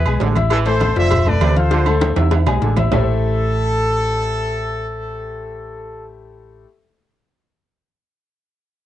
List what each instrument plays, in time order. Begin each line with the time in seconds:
Already playing: trumpet section G#4 B4
0.06 fingered electric bass B1, upright piano G#3 G#4 G#5, high conga, low agogo
0.20 fingered electric bass A1, trombone section D3, cowbell, high conga, low timbale
0.35 upright piano E4 E5 E6, cowbell, high conga, low agogo
0.50 trombone section E3, trumpet section E4 A4, cowbell, low agogo
0.65 upright piano A3 A4 A5, trumpet section A4 C5, cowbell, high conga, low agogo
0.80 cowbell, high conga, low timbale, low agogo
0.96 fingered electric bass F1, trombone section D3, upright piano F3 F4 E5, trumpet section C5 E5, cowbell, high conga
1.11 cowbell, high conga, low conga, low agogo
1.26 upright piano A3 A4 A5, trumpet section B4 D5, high conga, low conga, low agogo
1.41 fingered electric bass D2, trombone section C3, cowbell, high conga, low timbale, low agogo
1.56 upright piano F4 F5 F6, trumpet section A4 C5, cowbell, high conga
1.71 trombone section D3, upright piano F3 F4 F5, cowbell, high bongo, high conga, low agogo
1.86 upright piano A3 A4 A5, high bongo, high conga, low agogo
2.01 cowbell, high bongo, high conga, high timbale, low agogo
2.16 fingered electric bass E2, trombone section C3, upright piano E4 E5 E6, cowbell, low bongo, high conga, high timbale
2.31 cowbell, low bongo, high conga, high timbale, low agogo
2.46 fingered electric bass B1, upright piano G#3 G#4 G#5, low bongo, high conga, low timbale, low agogo
2.62 fingered electric bass A1, trombone section D3, cowbell, low bongo, high conga
2.76 upright piano E4 E5 E6, cowbell, low bongo, high conga, low timbale, low agogo
2.92 fingered electric bass A1, trombone section A2, upright piano A3 E4 G4 A4 C5 E5, trumpet section A4, low bongo, low conga, low timbale